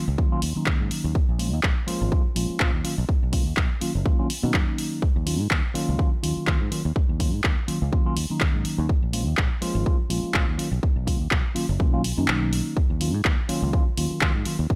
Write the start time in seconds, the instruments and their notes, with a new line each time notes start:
0.08 fingered electric bass C#2
0.17 tine electric piano D#3 F#3 A#3 C#4 F4, kick
0.32 tine electric piano D#3 F#3 A#3 C#4 F4, muted fingered electric bass stroke
0.42 fingered electric bass D#2, open hi-hat
0.55 tine electric piano D#3 F#3 A#3 C#4 D#4, muted fingered electric bass stroke
0.66 fingered electric bass D#2, kick, clap
0.80 fingered electric bass G#2
0.91 muted fingered electric bass stroke, open hi-hat
1.04 fingered electric bass D#2
1.15 kick
1.29 fingered electric bass A#1
1.38 tine electric piano F3 G#3 A#3 C#4 F4, open hi-hat
1.53 fingered electric bass D#2
1.63 fingered electric bass A#1, kick, clap
1.86 tine electric piano F3 G#3 A#3 C#4 F4, muted fingered electric bass stroke, open hi-hat
2.01 fingered electric bass G#1
2.11 tine electric piano F3 G#3 A#3 C#4 F4, kick
2.26 muted fingered electric bass stroke
2.35 fingered electric bass A#1, tine electric piano F3 G#3 A#3 C#4 F4, open hi-hat
2.50 muted fingered electric bass stroke
2.59 fingered electric bass A#1, tine electric piano F3 G#3 A#3 C#4 F4, kick, clap
2.74 fingered electric bass D#2
2.84 tine electric piano D#3 F#3 A#3 C#4 F4, muted fingered electric bass stroke, open hi-hat
2.98 fingered electric bass B1
3.09 kick
3.23 fingered electric bass B1
3.32 tine electric piano D#3 F#3 A#3 C#4 F4, kick, open hi-hat
3.47 fingered electric bass D#2
3.57 fingered electric bass B1, kick, clap
3.80 tine electric piano D#3 F#3 A#3 C#4 F4, muted fingered electric bass stroke, open hi-hat
3.95 fingered electric bass F#1
4.05 tine electric piano D#3 F#3 A#3 C#4 F4, kick
4.19 tine electric piano D#3 F#3 A#3 C#4 F4
4.30 open hi-hat
4.42 fingered electric bass B2, tine electric piano D#3 F#3 A#3 C#4 D#4
4.54 fingered electric bass F#2, kick, clap
4.78 open hi-hat
5.02 muted fingered electric bass stroke, kick
5.16 fingered electric bass D#2
5.26 tine electric piano D#3 F#3 A#3 C#4 F4, open hi-hat
5.40 fingered electric bass G#2
5.51 fingered electric bass D#2, kick, clap
5.74 tine electric piano D#3 F#3 A#3 C#4 F4, muted fingered electric bass stroke, open hi-hat
5.89 fingered electric bass C#2
5.98 tine electric piano D#3 F#3 A#3 C#4 F4, kick
6.13 muted fingered electric bass stroke
6.22 fingered electric bass D#2, tine electric piano D#3 F#3 A#3 C#4 F4, open hi-hat
6.37 muted fingered electric bass stroke
6.46 fingered electric bass D#2, tine electric piano D#3 F#3 A#3 C#4 F4, kick, clap
6.61 fingered electric bass G#2
6.71 tine electric piano D#3 F#3 A#3 C#4 F4, muted fingered electric bass stroke, open hi-hat
6.85 fingered electric bass D#2
6.96 kick
7.09 fingered electric bass D#2
7.19 tine electric piano D#3 F#3 A#3 C#4 F4, kick, open hi-hat
7.34 fingered electric bass G#2
7.44 fingered electric bass D#2, kick, clap
7.67 tine electric piano D#3 F#3 A#3 C#4 F4, muted fingered electric bass stroke, open hi-hat
7.82 fingered electric bass C#2
7.92 tine electric piano D#3 F#3 A#3 C#4 F4, kick
8.05 tine electric piano D#3 F#3 A#3 C#4 F4, muted fingered electric bass stroke
8.16 fingered electric bass D#2, open hi-hat
8.30 tine electric piano D#3 F#3 A#3 C#4 D#4, muted fingered electric bass stroke
8.41 fingered electric bass D#2, kick, clap
8.54 fingered electric bass G#2
8.65 muted fingered electric bass stroke, open hi-hat
8.78 fingered electric bass D#2
8.89 muted fingered electric bass stroke, kick
9.02 fingered electric bass A#1
9.13 tine electric piano F3 G#3 A#3 C#4 F4, open hi-hat
9.27 fingered electric bass D#2
9.37 fingered electric bass A#1, kick, clap
9.61 tine electric piano F3 G#3 A#3 C#4 F4, muted fingered electric bass stroke, open hi-hat
9.75 fingered electric bass G#1
9.85 tine electric piano F3 G#3 A#3 C#4 F4, kick
9.99 muted fingered electric bass stroke
10.09 fingered electric bass A#1, tine electric piano F3 G#3 A#3 C#4 F4, open hi-hat
10.23 muted fingered electric bass stroke
10.33 fingered electric bass A#1, tine electric piano F3 G#3 A#3 C#4 F4, kick, clap
10.47 fingered electric bass D#2
10.58 tine electric piano D#3 F#3 A#3 C#4 F4, muted fingered electric bass stroke, open hi-hat
10.71 fingered electric bass B1
10.83 kick
10.96 fingered electric bass B1
11.06 tine electric piano D#3 F#3 A#3 C#4 F4, kick, open hi-hat
11.20 fingered electric bass D#2
11.31 fingered electric bass B1, kick, clap
11.54 tine electric piano D#3 F#3 A#3 C#4 F4, muted fingered electric bass stroke, open hi-hat
11.69 fingered electric bass F#1
11.79 fingered electric bass B1, tine electric piano D#3 F#3 A#3 C#4 F4, kick
11.92 tine electric piano D#3 F#3 A#3 C#4 F4
12.04 open hi-hat
12.17 fingered electric bass F#2, tine electric piano D#3 F#3 A#3 C#4 D#4
12.28 fingered electric bass B1, clap
12.53 open hi-hat
12.77 muted fingered electric bass stroke, kick
12.90 fingered electric bass D#2
13.00 tine electric piano D#3 F#3 A#3 C#4 F4, open hi-hat
13.14 fingered electric bass G#2
13.25 fingered electric bass D#2, kick, clap
13.48 tine electric piano D#3 F#3 A#3 C#4 F4, muted fingered electric bass stroke, open hi-hat
13.62 fingered electric bass C#2
13.73 tine electric piano D#3 F#3 A#3 C#4 F4, kick
13.87 muted fingered electric bass stroke
13.97 fingered electric bass D#2, tine electric piano D#3 F#3 A#3 C#4 F4, open hi-hat
14.11 muted fingered electric bass stroke
14.21 fingered electric bass D#2, tine electric piano D#3 F#3 A#3 C#4 F4, kick, clap
14.35 fingered electric bass G#2
14.45 tine electric piano D#3 F#3 A#3 C#4 F4, muted fingered electric bass stroke, open hi-hat
14.59 fingered electric bass D#2
14.70 kick